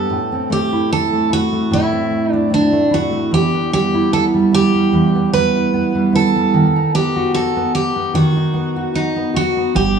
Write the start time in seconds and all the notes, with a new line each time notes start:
Already playing: B3 D4 G4 A4
0.10 A2
0.32 C4
0.50 A3 G4
0.72 E4
0.90 C4 A4
1.13 A3
1.30 E4 F#4
1.52 A3
1.71 A2 E4
1.92 C4
2.11 A3
2.32 D4 E4
2.50 C4 D4
2.72 A3
2.91 E4 F#4
3.13 A3
3.31 E2 G4
3.54 B3
3.72 G3 G4
3.94 E4
4.12 B3 A4
4.34 G3
4.52 E4 G4
4.74 G3
4.93 E2
5.15 B3
5.33 G3 B4
5.55 E4
5.74 B3
5.95 G3
6.13 E4 A4
6.36 G3
6.54 D#3
6.76 D#4
6.94 B3 G4
7.16 F#4
7.34 D#4 A4
7.56 B3
7.75 G4
7.96 B3
8.14 D#3 F#4
8.36 D#4
8.54 B3
8.76 F#4
8.94 D#4
9.16 B3
9.34 F#4
9.56 B3
9.75 G1 G2 G4
9.96 D4